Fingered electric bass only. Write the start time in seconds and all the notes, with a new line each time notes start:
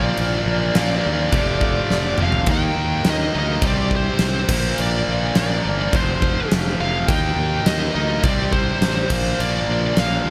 Already playing: A#1
0.18 A#1
0.46 A#1
0.76 A#1
1.06 D#2
1.33 F1
1.91 F1
2.20 F1
2.47 D#2
2.77 D#2
3.05 D#2
3.35 D2
3.63 C2
4.20 C2
4.49 A#1
4.79 A#1
5.07 A#1
5.36 A#1
5.65 G1
5.93 F1
6.52 F1
6.80 F1
7.09 D#2
7.36 D#2
7.66 D#2
7.95 D2
8.24 C2
8.81 A1
9.11 A#1
9.40 A#1
9.68 A#1
9.97 A#1
10.25 D#2